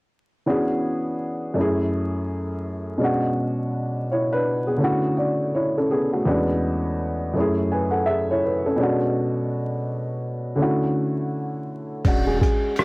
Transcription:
0.46 1.55 E3 medium
0.46 1.56 B3 medium
0.46 1.56 C#4 medium
0.46 1.57 D4 medium
0.46 1.57 F#4 medium
0.46 1.57 G#4 medium
1.54 2.97 F#2 medium
1.54 2.98 A3 medium
1.54 2.99 C#4 medium
1.59 2.99 E4 medium
1.59 3.00 G#4 medium
2.98 4.76 B2 medium
2.98 4.77 G#3 medium
2.98 4.07 C#4 medium
3.03 4.08 D4 medium
3.03 4.09 F#4 medium
4.12 4.32 E4 soft
4.12 4.31 C#5 medium
4.33 4.67 D4 medium
4.33 4.66 B4 medium
4.67 5.02 B3 soft
4.67 5.02 G#4 medium
4.77 6.21 D3 medium
4.77 5.16 A3 medium
4.77 5.16 C#4 medium
4.82 5.17 E4 medium
4.82 5.16 F#4 medium
5.17 5.52 F#4 medium
5.17 5.52 D5 medium
5.55 5.76 E4 medium
5.55 5.75 C#5 medium
5.78 5.91 C#4 medium
5.78 5.90 A4 medium
5.91 6.12 B3 soft
5.91 6.11 G#4 medium
6.13 6.47 A3 medium
6.13 6.27 F#4 medium
6.25 7.34 E2 medium
6.25 7.35 G#3 medium
6.25 7.35 B3 medium
6.25 7.35 C#4 medium
6.25 7.36 D4 medium
6.25 7.36 F#4 medium
7.34 8.76 F#2 medium
7.34 8.77 A3 medium
7.34 7.71 C#4 medium
7.39 7.72 E4 medium
7.39 7.73 G#4 medium
7.72 7.93 B4 soft
7.72 7.92 G#5 medium
7.91 8.06 A4 medium
7.91 8.05 F#5 medium
8.06 8.28 G#4 medium
8.06 8.27 E5 medium
8.31 8.44 E4 medium
8.31 8.43 C#5 medium
8.44 8.65 B4 medium
8.66 8.78 C#4 soft
8.66 9.00 A4 medium
8.76 10.55 B2 medium
8.76 10.56 G#3 medium
8.76 10.56 C#4 medium
8.81 10.57 D4 medium
8.81 10.58 F#4 medium
10.56 11.99 D3 medium
10.56 12.00 A3 medium
10.56 12.01 C#4 medium
10.61 12.02 E4 medium
10.61 12.03 F#4 medium
12.05 12.39 E1 loud
12.05 12.85 G#3 medium
12.05 12.85 C#4 medium
12.05 12.85 D4 medium
12.05 12.85 F#4 medium
12.05 kick loud
12.05 closed hi-hat medium
12.05 crash medium
12.27 12.40 G#4 medium
12.41 12.74 G#4 medium
12.41 kick medium
12.41 closed hi-hat medium
12.76 cross-stick loud
12.76 closed hi-hat medium

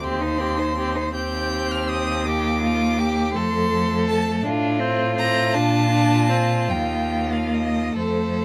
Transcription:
0.03 1.02 D#2 medium
0.03 0.22 C4 medium
0.03 0.25 G4 medium
0.03 1.14 C6 medium
0.21 0.40 D#4 medium
0.21 0.42 C5 medium
0.38 0.59 C4 medium
0.38 0.60 G4 medium
0.57 0.76 D#4 soft
0.57 0.77 C5 medium
0.76 0.97 C4 medium
0.76 0.97 G4 medium
0.95 1.12 D#4 medium
0.95 1.15 C5 medium
1.13 3.36 D#2 medium
1.13 2.27 C4 medium
1.13 2.21 G4 medium
1.13 1.73 G6 medium
1.71 1.91 F6 medium
1.89 2.28 D#6 medium
2.25 3.33 A#3 medium
2.25 2.61 G4 medium
2.25 3.33 D6 medium
2.62 3.00 F4 medium
2.99 3.37 G4 medium
3.33 4.43 F2 medium
3.33 4.44 A3 medium
3.33 4.47 A4 medium
3.33 4.05 C6 loud
4.07 4.43 A5 medium
4.43 5.57 A2 medium
4.43 4.81 D4 medium
4.43 7.95 F4 medium
4.79 5.16 C4 medium
5.17 5.56 C4 medium
5.17 5.56 A#5 loud
5.54 6.72 A#2 medium
5.54 5.90 D4 medium
5.54 6.72 A5 loud
5.90 6.31 D4 medium
6.30 6.73 C4 medium
6.70 7.96 D#2 medium
6.70 7.98 A#3 medium
6.70 7.34 G5 medium
7.32 7.56 F5 medium
7.54 7.97 D#5 medium
7.96 8.45 F2 medium
7.96 8.45 A3 medium
7.96 8.45 A4 medium
7.96 8.45 C5 medium

